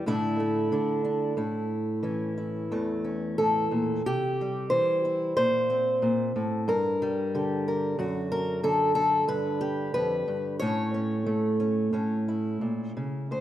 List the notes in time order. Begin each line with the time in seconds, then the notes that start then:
0.06 A2 D3 A3 D4 E4
0.40 A3
0.72 D3 D4
1.05 D4
1.37 A2 E4
2.03 E3 C#4
2.38 E4
2.71 E2 A3
3.04 C#4
3.38 A2 A4
3.71 A#2
4.06 C3 G4
4.41 G3
4.70 E3 C5
5.05 E4
5.37 A#2 C5
5.70 C4
6.02 A#2
6.36 A2
6.68 G2 A#4
7.02 G3
7.35 D3 G4
7.68 A#4
7.99 F#2 F#4
8.32 A#4
8.63 D3 A4
8.95 A4
9.28 G2 B4
9.61 G4
9.94 F2 B4
10.28 G2
10.59 A2 A3 C#4 C#5
10.94 C#4
11.26 A3
11.60 C#4
11.93 A2 C#4
12.28 E4
12.61 A#2
12.97 C#3
13.31 D2 C5